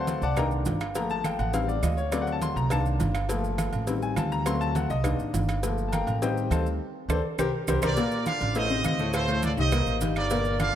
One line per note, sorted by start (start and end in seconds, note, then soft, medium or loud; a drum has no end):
0.00 0.17 D2 medium
0.00 0.20 F#3 medium
0.00 0.20 A3 medium
0.00 0.21 C4 medium
0.00 0.21 C5 medium
0.00 0.21 F#5 medium
0.00 0.21 A5 medium
0.00 0.20 C6 loud
0.07 cowbell medium
0.07 high conga loud
0.07 low agogo medium
0.07 maracas medium
0.22 0.63 C2 loud
0.22 0.37 D5 medium
0.22 0.37 F#5 medium
0.22 0.37 A5 medium
0.22 0.37 D6 loud
0.22 maracas soft
0.36 0.79 D#3 medium
0.36 0.79 A#3 medium
0.36 0.79 D4 medium
0.36 0.46 A#4 medium
0.36 0.46 D#5 medium
0.36 0.47 G5 medium
0.36 0.46 A#5 loud
0.36 cowbell loud
0.36 high conga soft
0.36 low conga medium
0.36 low agogo loud
0.36 claves medium
0.36 maracas medium
0.51 high conga soft
0.51 maracas soft
0.65 1.34 G1 medium
0.65 cowbell medium
0.65 high conga medium
0.65 low timbale medium
0.65 low agogo medium
0.65 maracas medium
0.80 cowbell medium
0.80 low agogo loud
0.80 claves medium
0.80 maracas soft
0.95 1.51 F3 medium
0.95 1.52 A3 medium
0.95 1.52 A#3 medium
0.95 1.10 A#5 medium
0.95 cowbell loud
0.95 high conga soft
0.95 low agogo medium
0.95 maracas medium
1.10 1.25 A5 loud
1.10 high conga soft
1.10 maracas soft
1.24 1.39 G5 medium
1.24 cowbell medium
1.24 high conga loud
1.24 low agogo loud
1.24 claves medium
1.24 maracas medium
1.39 1.80 A1 loud
1.39 1.53 F#5 medium
1.39 high conga soft
1.39 low agogo medium
1.39 maracas soft
1.53 1.73 D#3 medium
1.53 1.73 G3 medium
1.53 1.74 C4 medium
1.53 1.68 F5 medium
1.53 cowbell loud
1.53 high conga soft
1.53 maracas medium
1.68 1.83 D5 medium
1.68 high conga soft
1.68 maracas soft
1.82 2.51 D2 loud
1.82 1.97 D#5 medium
1.82 cowbell medium
1.82 high conga medium
1.82 low timbale medium
1.82 low agogo medium
1.82 claves medium
1.82 maracas medium
1.97 2.12 C#5 medium
1.97 maracas soft
2.11 2.68 F#3 medium
2.11 2.68 A3 medium
2.11 2.68 C4 medium
2.11 2.22 D5 medium
2.11 cowbell loud
2.11 high conga soft
2.11 low agogo loud
2.11 claves medium
2.11 maracas medium
2.22 2.32 F#5 medium
2.27 high conga soft
2.27 low agogo medium
2.27 maracas soft
2.32 2.42 A5 medium
2.41 2.56 C6 loud
2.41 cowbell medium
2.41 high conga loud
2.41 low agogo medium
2.41 maracas medium
2.56 2.97 C2 loud
2.56 2.71 A#5 medium
2.56 maracas soft
2.70 3.13 D#3 medium
2.70 3.13 A#3 soft
2.70 3.13 D4 medium
2.70 2.80 A5 loud
2.70 cowbell loud
2.70 high conga soft
2.70 low conga medium
2.70 low agogo loud
2.70 claves medium
2.70 maracas medium
2.85 high conga soft
2.85 maracas soft
2.99 3.68 G1 medium
2.99 cowbell medium
2.99 high conga medium
2.99 low timbale medium
2.99 low agogo medium
2.99 maracas medium
3.15 cowbell medium
3.15 low agogo loud
3.15 claves medium
3.15 maracas soft
3.29 3.85 F3 medium
3.29 3.85 A3 medium
3.29 3.85 A#3 medium
3.29 cowbell loud
3.29 high conga soft
3.29 low agogo medium
3.29 maracas medium
3.44 high conga soft
3.44 maracas soft
3.58 cowbell medium
3.58 high conga loud
3.58 low agogo loud
3.58 claves medium
3.58 maracas medium
3.73 4.14 A1 loud
3.73 high conga soft
3.73 low agogo loud
3.73 maracas soft
3.87 4.43 D#3 medium
3.87 4.44 G3 medium
3.87 4.44 C4 medium
3.87 cowbell loud
3.87 high conga soft
3.87 maracas medium
4.02 4.17 G#5 medium
4.02 high conga soft
4.02 maracas soft
4.16 4.85 D2 loud
4.16 4.32 A5 medium
4.16 cowbell medium
4.16 high conga medium
4.16 low timbale medium
4.16 low agogo loud
4.16 claves medium
4.16 maracas medium
4.32 4.46 A#5 loud
4.32 high conga soft
4.32 maracas soft
4.46 4.88 F#3 medium
4.46 4.88 A3 medium
4.46 4.89 C4 medium
4.46 4.61 C6 loud
4.46 cowbell loud
4.46 high conga soft
4.46 low agogo loud
4.46 claves medium
4.46 maracas medium
4.61 4.75 A5 loud
4.61 high conga soft
4.61 low agogo medium
4.61 maracas soft
4.75 4.90 F#5 medium
4.75 cowbell medium
4.75 high conga loud
4.75 low agogo medium
4.75 maracas medium
4.90 5.17 C2 loud
4.90 5.31 D#5 loud
4.90 maracas soft
5.04 5.60 D#3 medium
5.04 5.60 A#3 medium
5.04 5.61 D4 medium
5.04 cowbell loud
5.04 high conga soft
5.04 low conga medium
5.04 low agogo loud
5.04 claves medium
5.04 maracas medium
5.19 5.33 A1 medium
5.19 high conga soft
5.19 maracas soft
5.34 6.02 G1 loud
5.34 cowbell medium
5.34 high conga medium
5.34 low timbale medium
5.34 low agogo medium
5.34 maracas medium
5.49 cowbell medium
5.49 low agogo loud
5.49 claves medium
5.49 maracas soft
5.63 6.19 F3 medium
5.63 6.19 A3 medium
5.63 6.19 A#3 medium
5.63 cowbell loud
5.63 high conga soft
5.63 low agogo medium
5.63 maracas medium
5.78 high conga soft
5.78 maracas soft
5.88 5.91 A5 medium
5.92 6.20 A#4 medium
5.92 6.20 F5 medium
5.92 6.20 G5 medium
5.92 6.20 A#5 medium
5.92 cowbell medium
5.92 high conga loud
5.92 low agogo loud
5.92 claves medium
5.92 maracas medium
6.07 6.48 A1 loud
6.07 high conga soft
6.07 low agogo medium
6.07 maracas soft
6.21 6.77 D#3 medium
6.21 6.78 G3 medium
6.21 6.78 C4 medium
6.21 6.49 G4 medium
6.21 6.50 C5 medium
6.21 6.50 D#5 medium
6.21 6.49 G5 medium
6.21 cowbell loud
6.21 high conga soft
6.21 maracas medium
6.37 high conga soft
6.37 maracas soft
6.50 6.78 D2 loud
6.50 6.66 A4 medium
6.50 6.66 C5 medium
6.50 6.66 D#5 medium
6.50 6.66 A5 medium
6.50 cowbell medium
6.50 high conga loud
6.50 low agogo loud
6.50 claves medium
6.50 maracas medium
6.66 maracas soft
7.09 7.20 D2 loud
7.09 7.19 A4 loud
7.09 7.19 C5 medium
7.09 7.19 D5 medium
7.09 cowbell medium
7.09 high conga loud
7.09 high timbale loud
7.09 claves medium
7.09 maracas loud
7.38 7.49 C2 medium
7.38 7.48 G4 loud
7.38 7.48 A#4 loud
7.38 7.48 C5 loud
7.38 cowbell loud
7.38 high conga loud
7.38 high timbale loud
7.38 claves loud
7.38 maracas loud
7.67 7.79 C2 loud
7.67 7.78 G4 medium
7.67 7.78 A#4 medium
7.67 7.78 C5 medium
7.67 cowbell loud
7.67 high conga loud
7.67 high timbale loud
7.67 claves loud
7.67 maracas loud
7.82 7.94 C2 medium
7.82 7.92 G4 medium
7.82 7.92 A#4 loud
7.82 8.24 A#4 medium
7.82 7.92 C5 loud
7.82 8.24 D5 loud
7.82 cowbell loud
7.82 high conga medium
7.82 high timbale loud
7.82 claves loud
7.82 maracas loud
7.97 8.21 A#2 medium
7.97 8.21 A#3 loud
7.97 8.21 A#4 medium
7.97 cowbell loud
7.97 low agogo medium
7.97 maracas medium
8.11 high conga soft
8.11 maracas soft
8.26 8.50 D3 medium
8.26 8.50 D4 medium
8.26 8.50 F4 medium
8.26 8.54 D5 loud
8.26 8.54 F5 loud
8.26 cowbell medium
8.26 high conga loud
8.26 low agogo loud
8.26 claves medium
8.26 maracas medium
8.41 8.82 A1 loud
8.41 high conga soft
8.41 low agogo loud
8.41 maracas soft
8.55 8.68 A2 medium
8.55 8.68 A3 medium
8.55 8.68 A4 medium
8.55 8.84 C5 medium
8.55 8.84 D#5 loud
8.55 cowbell loud
8.55 high conga soft
8.55 maracas medium
8.70 8.94 C3 medium
8.70 8.94 C4 medium
8.70 8.95 D#4 medium
8.70 high conga soft
8.70 maracas soft
8.84 9.52 D2 loud
8.84 9.12 C5 medium
8.84 9.12 D#5 loud
8.84 cowbell medium
8.84 high conga medium
8.84 low agogo loud
8.84 claves medium
8.84 maracas medium
8.99 9.23 A2 loud
8.99 9.24 A3 loud
8.99 9.24 A4 loud
8.99 high conga soft
8.99 maracas soft
9.13 9.42 A4 medium
9.13 9.41 C5 loud
9.13 cowbell loud
9.13 high conga soft
9.13 low agogo loud
9.13 claves medium
9.13 maracas medium
9.28 9.52 A2 medium
9.28 9.53 A3 medium
9.28 9.53 A4 loud
9.28 high conga soft
9.28 low agogo medium
9.28 maracas soft
9.43 9.51 A4 medium
9.43 9.51 D5 loud
9.43 cowbell medium
9.43 high conga loud
9.43 low agogo medium
9.43 maracas medium
9.57 9.85 C2 loud
9.57 9.70 D#3 medium
9.57 9.70 D#4 medium
9.57 9.70 G4 medium
9.57 10.00 C5 medium
9.57 9.99 D#5 loud
9.57 maracas soft
9.72 9.96 A#2 medium
9.72 9.97 A#3 loud
9.72 9.97 A#4 medium
9.72 cowbell loud
9.72 high conga soft
9.72 low conga medium
9.72 low agogo loud
9.72 claves medium
9.72 maracas medium
9.86 10.00 A1 medium
9.86 high conga soft
9.86 maracas soft
10.01 10.69 G1 loud
10.01 10.25 D#3 medium
10.01 10.25 D#4 medium
10.01 10.26 G4 medium
10.01 cowbell medium
10.01 high conga medium
10.01 low agogo medium
10.01 maracas medium
10.16 10.58 A#4 medium
10.16 10.57 D5 loud
10.16 cowbell medium
10.16 low agogo loud
10.16 claves medium
10.16 maracas soft
10.30 10.55 A#2 medium
10.30 10.55 A#3 loud
10.30 10.55 A#4 medium
10.30 cowbell loud
10.30 high conga soft
10.30 low agogo loud
10.30 maracas medium
10.45 high conga soft
10.45 maracas soft
10.60 10.75 D3 medium
10.60 10.75 D4 medium
10.60 10.75 F4 medium
10.60 10.75 D5 medium
10.60 10.75 F5 loud
10.60 cowbell medium
10.60 high conga loud
10.60 low agogo loud
10.60 claves medium
10.60 maracas medium